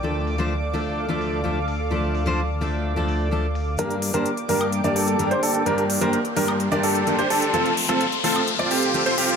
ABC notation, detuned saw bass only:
X:1
M:4/4
L:1/16
Q:1/4=128
K:Gm
V:1 name="Detuned saw bass" clef=bass
D,,16- | D,,16 | G,,,3 G,,,3 G,,,3 G,,, G,,,3 G,,, G,,,2 | G,,,3 G,,,3 G,,,3 G,,, G,,,3 z G,,,2 |
F,,,3 F,,,3 F,,,3 F,,, F,,,3 F,,, F,,,2 |]